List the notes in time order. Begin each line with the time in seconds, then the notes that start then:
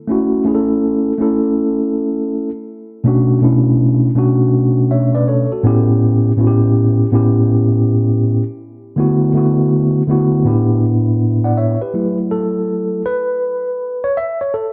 0.08 A3 C#4 E4 F#4
0.45 A3 C#4 E4 G#4
0.55 A4
1.19 A3 C#4 E4 A4
3.04 B2 A3 C#4 D4 F#4
3.41 B2 A3 C#4 D4 E4
4.15 B2 A3 C#4 D4 F#4
4.91 C#5 E5
5.15 B4 D5
5.28 A4 C#5
5.52 F#4 A4
5.63 A2 B3 C#4 E4 G4
6.37 A2 B3 C#4 E4 F#4
6.47 G4
7.11 A2 B3 C#4 E4 G4
8.96 D3 A3 B3 E4 F#4
9.34 D3 A3 B3 E4 F#4
10.07 D3 A3 B3 E4 F#4
10.44 A2 B3 D4 E4 G4
11.44 D5 F#5
11.57 C#5 E5
11.82 G4 B4
11.94 F#3 A3 E4
12.31 A4
13.06 B4
14.04 C#5
14.17 E5
14.41 C#5
14.54 A4